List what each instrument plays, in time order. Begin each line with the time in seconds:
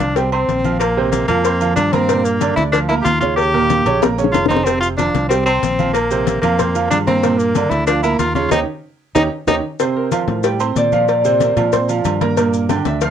Already playing: grand piano F3 F4 F5, tenor saxophone D4
0.00 fingered electric bass C2, cowbell, high conga, maracas
0.16 grand piano G3 G4 G5, tenor saxophone C4, cowbell, low agogo, maracas
0.32 tenor saxophone C4, grand piano C4 C5 C6, high conga, low agogo
0.48 fingered electric bass A#1, cowbell, high conga, maracas
0.64 grand piano F3 F4 F5, high conga, low agogo, maracas
0.79 tenor saxophone A#3, cowbell, low agogo, maracas
0.97 grand piano C3 C4 C5, high conga
1.11 tenor saxophone A#3, cowbell, high conga, low agogo, maracas
1.28 fingered electric bass F2, grand piano F3 F4 F5, tenor saxophone A#3, cowbell, high conga, low conga, low agogo, maracas
1.45 grand piano C4 C5 C6, cowbell, maracas
1.61 grand piano F3 F4 F5, high conga, low agogo, maracas
1.76 fingered electric bass G2, tenor saxophone D4, cowbell, high conga, low agogo, maracas
1.93 grand piano A#3 A#4 A#5, tenor saxophone C4, cowbell, high conga, maracas
2.09 grand piano A#2 A#3 A#4, cowbell, high conga, low agogo, maracas
2.25 tenor saxophone A#3, high conga, maracas
2.41 grand piano D3 D4 D5, cowbell, high conga, low agogo, maracas
2.56 fingered electric bass D2, tenor saxophone E4, cowbell, high conga, maracas
2.72 grand piano F3 F4 F5, tenor saxophone D4, cowbell, low agogo, maracas
2.89 grand piano A#3 A#4 A#5, tenor saxophone E4, high conga, low agogo
3.02 fingered electric bass D#2, tenor saxophone F4 G4, high conga, maracas
3.06 cowbell, low timbale
3.20 grand piano C#3 C#4 C#5, tenor saxophone F4, high conga, low agogo, maracas
3.36 tenor saxophone G4, cowbell, low agogo, maracas
3.54 grand piano A#2 A#3 A#4
3.70 cowbell, high conga, high timbale, low agogo, maracas
3.85 fingered electric bass A#1, grand piano C#3 C#4 C#5, cowbell, high conga, low conga, low agogo, maracas
4.02 grand piano A#3 A#4 A#5, cowbell, high bongo, high conga, low conga, low timbale, maracas
4.18 grand piano C#3 C#4 C#5, high conga, low timbale, low agogo, maracas
4.24 low bongo
4.32 fingered electric bass F1, tenor saxophone F4, cowbell, low bongo, high conga, low timbale, low agogo, maracas
4.46 tenor saxophone D#4, low bongo
4.50 grand piano C4 C5 C6, cowbell, high conga, low timbale, maracas
4.56 low bongo
4.64 grand piano C3 C4 C5, tenor saxophone C4, cowbell, high conga, low agogo, maracas
4.80 tenor saxophone F4, high conga, maracas
4.97 grand piano F3 F4 F5, tenor saxophone D4, cowbell, high conga, low agogo, maracas
5.14 fingered electric bass C2, cowbell, high conga, maracas
5.29 grand piano G3 G4 G5, tenor saxophone C4, cowbell, high conga, low agogo, maracas
5.45 tenor saxophone C4, grand piano C4 C5 C6, high conga, low agogo, maracas
5.62 fingered electric bass A#1, cowbell, high conga, maracas
5.79 grand piano F3 F4 F5, high conga, low agogo, maracas
5.93 tenor saxophone A#3, cowbell, low agogo, maracas
6.11 grand piano C3 C4 C5, high conga, maracas
6.27 cowbell, high conga, low agogo, maracas
6.42 fingered electric bass F2, grand piano F3 F4 F5, tenor saxophone A#3, cowbell, high conga, low conga, low agogo, maracas
6.59 grand piano C4 C5 C6, cowbell, high conga, low conga, maracas
6.75 grand piano F3 F4 F5, high conga, low agogo, maracas
6.90 fingered electric bass G2, tenor saxophone D4, cowbell, high conga, low timbale, low agogo, maracas
7.07 grand piano A#3 A#4 A#5, tenor saxophone C4, cowbell, high conga, maracas
7.23 grand piano A#2 A#3 A#4, cowbell, high conga, low agogo, maracas
7.38 tenor saxophone A#3, high conga, maracas
7.55 grand piano D3 D4 D5, cowbell, high conga, low agogo, maracas
7.70 fingered electric bass D2, tenor saxophone E4, cowbell, high conga, maracas
7.87 grand piano F3 F4 F5, tenor saxophone D4, cowbell, high conga, low agogo, maracas
8.03 grand piano A#3 A#4 A#5, tenor saxophone E4, high conga, low agogo, maracas
8.19 fingered electric bass D#2, tenor saxophone F4, cowbell, high conga, low timbale, maracas
8.35 grand piano C#3 C#4 C#5, tenor saxophone F4, high conga, low agogo, maracas
8.51 fingered electric bass D#2, grand piano C#4 D#4 G4, tenor saxophone D#4, cowbell, high conga, high timbale, maracas
9.15 fingered electric bass D#2, grand piano C#4 D#4 G4, tenor saxophone D#4, cowbell, high conga, high timbale, maracas
9.47 fingered electric bass D#2, grand piano C#4 D#4 G4, tenor saxophone D#4, cowbell, high conga, high timbale, maracas
9.79 grand piano C3 C4 C5, harp C5, cowbell, high conga, low agogo, maracas
9.96 harp A#4, high conga
10.11 grand piano F3 F4 F5, harp C5, cowbell, high conga, low agogo, maracas
10.27 fingered electric bass A2, cowbell, high conga, maracas
10.43 grand piano G3 G4 G5, harp A4, cowbell, high conga, low agogo, maracas
10.60 grand piano C4 C5 C6, high conga, low agogo, maracas
10.75 fingered electric bass A#2, harp D5, cowbell, high conga, low timbale, maracas
10.92 grand piano F3 F4 F5, harp C5, high conga, low agogo, maracas
11.08 harp D5, cowbell, high conga, low agogo, maracas
11.24 grand piano C3 C4 C5, high conga, maracas
11.40 harp A#4, cowbell, high conga, low agogo, maracas
11.56 fingered electric bass A#2, grand piano F3 F4 F5, cowbell, high conga, low conga, low agogo, maracas
11.72 grand piano C4 C5 C6, cowbell, high conga, low conga, maracas
11.89 grand piano F3 F4 F5, high conga, low agogo, maracas
12.05 fingered electric bass G2, cowbell, high conga, low agogo, maracas
12.21 grand piano A#3 A#4 A#5, cowbell, high conga, maracas
12.37 grand piano A#2 A#3 A#4, cowbell, low agogo, maracas
12.54 high conga, maracas
12.69 grand piano D3 D4 D5, harp G5, cowbell, high conga, low agogo, maracas
12.85 fingered electric bass D2, harp E5, cowbell, high conga, maracas
13.01 grand piano F3 F4 F5, harp F5, cowbell, high conga, low agogo, maracas